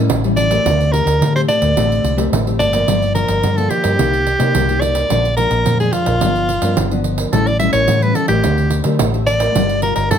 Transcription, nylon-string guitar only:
0.00 0.18 G3 medium
0.00 0.18 C#4 medium
0.00 0.19 E4 medium
0.09 0.62 E3 medium
0.24 0.47 G3 medium
0.24 0.47 C#4 medium
0.24 0.47 E4 medium
0.50 1.02 A3 medium
0.50 0.92 C4 medium
0.50 0.92 G4 medium
0.65 1.18 D3 medium
0.93 1.30 C4 medium
0.93 1.30 G4 medium
1.21 1.73 A2 medium
1.35 1.72 A3 medium
1.35 1.72 C4 medium
1.35 1.72 G4 medium
1.76 2.29 D3 soft
1.76 2.13 A3 soft
1.76 2.14 C4 medium
1.76 2.14 G4 medium
2.16 2.41 A3 medium
2.16 2.41 C4 medium
2.16 2.41 G4 medium
2.32 2.85 A2 medium
2.46 2.69 A3 medium
2.46 2.70 C4 medium
2.46 2.70 G4 medium
2.72 3.10 F3 medium
2.72 3.10 A#3 medium
2.72 3.11 D4 medium
2.87 3.40 G2 medium
3.14 3.52 F3 medium
3.14 3.52 A#3 soft
3.14 3.52 D4 medium
3.43 3.96 D3 medium
3.57 3.94 F3 medium
3.57 3.94 A#3 medium
3.57 3.95 D4 medium
3.98 4.51 C3 soft
3.98 4.25 A#3 medium
3.98 4.25 D#4 medium
3.98 4.25 G4 medium
4.39 4.63 A#3 medium
4.39 4.63 D#4 medium
4.39 4.63 G4 medium
4.54 5.07 G2 medium
4.68 5.06 A#3 medium
4.68 5.06 D#4 medium
4.68 5.06 G4 medium
5.09 5.63 A#2 medium
5.09 5.26 F3 medium
5.09 5.26 G#3 medium
5.09 5.27 D4 medium
5.37 5.75 F3 soft
5.37 5.75 G#3 soft
5.37 5.75 D4 medium
5.66 6.18 F2 medium
5.80 6.17 F3 medium
5.80 6.17 G#3 medium
5.80 6.17 D4 medium
6.21 6.74 G2 medium
6.21 6.47 F3 medium
6.21 6.48 B3 medium
6.21 6.48 D4 medium
6.62 6.86 F3 medium
6.62 6.86 B3 medium
6.62 6.86 D4 medium
6.77 7.30 D3 medium
6.91 7.28 F3 soft
6.91 7.28 B3 medium
6.91 7.29 D4 medium
7.32 7.85 A2 medium
7.32 7.49 G3 medium
7.32 7.49 C#4 medium
7.32 7.49 E4 medium
7.59 7.97 G3 medium
7.59 7.97 C#4 medium
7.59 7.97 E4 medium
7.88 8.41 E3 medium
8.02 8.26 G3 medium
8.02 8.26 C#4 medium
8.02 8.26 E4 medium
8.29 8.81 A3 medium
8.29 8.81 C4 medium
8.29 8.81 G4 medium
8.44 8.97 D3 medium
8.84 9.08 A3 medium
8.84 9.09 C4 medium
8.84 9.09 G4 medium
8.99 9.52 A2 medium
9.14 9.51 A3 medium
9.14 9.51 C4 medium
9.14 9.51 G4 medium
9.55 10.08 G3 medium
9.55 9.78 D4 medium
9.55 9.78 F4 medium
9.55 9.79 A#4 medium
9.82 10.09 D4 soft
9.82 10.09 F4 medium
9.82 10.09 A#4 medium
10.10 10.19 D3 medium

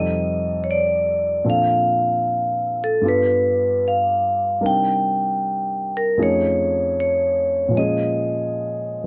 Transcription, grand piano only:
0.00 1.43 F2 soft
0.00 1.44 C3 soft
0.00 1.45 G3 soft
0.00 1.44 C4 soft
0.00 1.45 D#4 soft
0.00 1.45 A4 soft
1.44 3.03 A#2 soft
1.44 3.03 F3 soft
1.44 3.03 C4 soft
1.44 3.03 D4 soft
1.44 3.03 A4 soft
3.01 4.60 G2 soft
3.01 4.60 G3 soft
3.01 4.61 B3 soft
3.01 4.62 F4 soft
3.06 4.62 A4 soft
4.61 6.17 C3 soft
4.61 6.17 G3 soft
4.61 6.17 D4 soft
4.61 6.17 D#4 soft
4.61 6.18 A#4 soft
6.18 7.74 F2 soft
6.18 7.70 F3 soft
6.18 7.74 A3 soft
6.18 7.74 C#4 soft
6.18 7.74 D#4 soft
6.18 7.74 G#4 soft
7.68 9.07 A#2 soft
7.68 9.02 F3 soft
7.74 9.07 G#3 soft
7.74 9.07 C#4 soft
7.79 9.07 G#4 soft

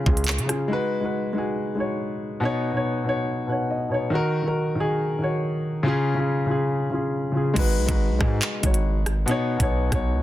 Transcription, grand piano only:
0.00 0.04 C#3 loud
0.00 0.44 C#3 medium
0.00 0.06 C#4 loud
0.00 0.07 F4 loud
0.00 0.09 G#4 loud
0.06 0.45 C#4 medium
0.06 0.46 F4 medium
0.06 0.47 G#4 medium
0.46 0.67 C#3 medium
0.46 0.68 C#4 medium
0.46 0.69 F4 medium
0.51 0.70 G#4 medium
0.68 0.99 G#3 loud
0.68 1.00 D#4 loud
0.68 1.01 F#4 loud
0.73 1.01 B4 loud
1.00 1.31 G#3 medium
1.00 1.32 D#4 medium
1.00 1.33 F#4 medium
1.05 1.34 B4 medium
1.33 1.73 G#3 medium
1.33 1.74 D#4 medium
1.33 1.75 F#4 medium
1.38 1.76 G#4 medium
1.75 2.36 G#3 medium
1.75 2.37 D#4 medium
1.75 2.37 F#4 medium
1.80 2.38 C#5 medium
2.40 2.70 B2 loud
2.40 2.72 B3 loud
2.40 2.72 D#4 loud
2.45 2.73 C#5 loud
2.72 3.02 B2 medium
2.72 3.03 B3 medium
2.72 3.04 D#4 medium
2.77 3.05 C#5 loud
3.04 3.45 B2 medium
3.04 3.45 B3 medium
3.04 3.46 D#4 medium
3.09 3.47 C#5 loud
3.47 3.88 B2 medium
3.47 3.88 B3 medium
3.47 3.89 D#4 medium
3.47 3.69 F#5 medium
3.52 3.90 C#5 medium
3.70 3.90 D#5 medium
3.89 4.10 B2 medium
3.89 4.11 B3 medium
3.89 4.10 D#4 medium
3.89 3.93 C#5 medium
3.94 4.13 C#5 medium
4.10 4.41 D#3 loud
4.10 4.42 D#4 loud
4.10 4.43 F#4 loud
4.15 4.44 A#4 loud
4.43 4.74 D#3 medium
4.43 4.75 D#4 medium
4.43 4.75 F#4 medium
4.48 4.76 A#4 loud
4.75 5.16 D#3 medium
4.75 5.17 D#4 medium
4.75 5.18 F#4 medium
4.80 5.19 G#4 loud
5.19 5.79 D#3 medium
5.19 5.80 D#4 medium
5.19 5.81 F#4 medium
5.24 5.81 C#5 medium
5.83 6.13 C#3 loud
5.83 6.14 C#4 loud
5.83 6.15 F4 loud
5.88 6.16 G#4 loud
6.14 6.45 C#3 loud
6.14 6.46 C#4 medium
6.14 6.47 F4 medium
6.19 6.48 G#4 medium
6.46 6.87 C#3 medium
6.46 6.88 C#4 medium
6.46 6.89 F4 medium
6.51 6.90 G#4 loud
6.90 7.30 C#3 medium
6.90 7.31 C#4 medium
6.90 7.32 F4 medium
6.95 7.33 G#4 medium
7.32 7.53 C#3 medium
7.32 7.54 C#4 medium
7.32 7.55 F4 medium
7.37 7.56 G#4 medium
7.54 7.85 G#3 loud
7.54 7.85 D#4 loud
7.54 7.86 F#4 loud
7.59 7.87 B4 loud
7.86 8.17 G#3 medium
7.86 8.18 D#4 medium
7.86 8.19 F#4 medium
7.91 8.19 B4 loud
8.19 8.59 G#3 medium
8.19 8.60 D#4 medium
8.19 8.61 F#4 medium
8.24 8.62 G#4 loud
8.61 9.21 G#3 medium
8.61 9.22 D#4 medium
8.61 9.23 F#4 medium
8.66 9.24 C#5 medium
9.26 9.56 B2 loud
9.26 9.57 B3 loud
9.26 9.58 D#4 loud
9.31 9.59 C#5 loud
9.57 9.88 B2 medium
9.57 9.89 B3 medium
9.57 9.90 D#4 medium
9.63 9.91 C#5 loud
9.89 10.23 B2 medium
9.89 10.23 B3 medium
9.89 10.23 D#4 medium
9.95 10.23 C#5 loud

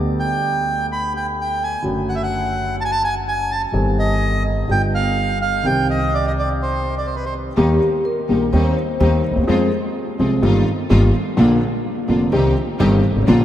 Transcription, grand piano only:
0.00 1.75 D2 soft
0.00 1.75 D3 soft
0.00 1.75 G3 soft
0.00 1.75 B3 soft
0.00 1.76 G4 soft
1.82 3.64 F#2 soft
1.82 3.64 D3 soft
1.82 3.64 F#3 soft
1.82 3.65 A3 soft
1.82 3.65 F#4 soft
3.72 4.65 G1 soft
3.72 4.65 G2 soft
3.72 4.64 D#3 soft
3.72 4.64 G3 soft
3.72 4.65 C4 soft
3.72 4.66 G4 soft
4.68 5.61 G1 soft
4.68 5.60 G2 soft
4.68 5.59 D3 soft
4.68 5.60 G3 soft
4.68 5.61 B3 soft
4.72 5.62 F4 soft
5.63 7.48 C2 medium
5.63 7.48 C3 soft
5.63 7.47 D#3 soft
5.63 7.48 G3 soft
5.63 7.48 C4 soft
5.63 7.49 G4 soft
7.57 7.78 D#2 medium
7.57 7.78 D#3 medium
7.57 7.78 G3 medium
7.57 7.78 A#3 medium
7.57 7.78 G4 medium
8.29 8.49 A#1 soft
8.29 8.49 A#2 soft
8.29 8.49 D#3 soft
8.29 8.49 G3 soft
8.29 8.49 A#3 soft
8.29 8.49 G4 soft
8.53 8.73 D#2 medium
8.53 8.73 D#3 medium
8.53 8.73 G3 medium
8.53 8.73 C4 soft
8.53 8.73 G4 medium
9.00 9.21 D#2 medium
9.00 9.21 D#3 medium
9.00 9.21 G3 medium
9.00 9.21 C4 medium
9.00 9.21 G4 medium
9.30 9.36 D2 soft
9.36 9.42 D#2 medium
9.42 9.48 E2 medium
9.48 9.68 F2 medium
9.48 9.68 F3 medium
9.48 9.68 G#3 medium
9.48 9.68 C4 medium
9.48 9.68 G#4 medium
10.19 10.39 C2 soft
10.19 10.39 C3 medium
10.19 10.39 F3 soft
10.19 10.39 G#3 soft
10.19 10.39 C4 soft
10.19 10.39 G#4 soft
10.42 10.63 G1 medium
10.42 10.63 G2 medium
10.42 10.63 D#3 medium
10.42 10.63 G3 soft
10.42 10.63 A#3 soft
10.42 10.63 F4 medium
10.90 11.10 G1 medium
10.90 11.10 G2 medium
10.90 11.10 D#3 medium
10.90 11.10 G3 medium
10.90 11.10 A#3 medium
10.90 11.11 F4 medium
11.37 11.57 A#1 medium
11.37 11.57 A#2 medium
11.37 11.57 D3 medium
11.37 11.57 F3 medium
11.37 11.57 A#3 medium
11.37 11.57 F4 medium
12.08 12.29 F1 medium
12.08 12.28 F2 soft
12.08 12.28 D3 soft
12.08 12.29 F3 soft
12.08 12.28 A#3 soft
12.08 12.29 F4 soft
12.32 12.52 C2 medium
12.32 12.53 C3 medium
12.32 12.52 D#3 medium
12.32 12.53 G3 medium
12.32 12.53 C4 medium
12.32 12.53 G4 medium
12.80 13.00 G1 medium
12.80 13.00 G2 medium
12.80 13.00 D#3 medium
12.80 13.00 G3 medium
12.80 13.00 C4 medium
12.80 13.00 G4 medium
13.10 13.16 G1 soft
13.16 13.22 G#1 medium
13.22 13.28 A1 medium
13.28 13.45 A#1 medium
13.28 13.45 A#2 medium
13.28 13.45 D3 medium
13.28 13.45 F3 medium
13.28 13.45 A#3 medium
13.28 13.45 F4 medium

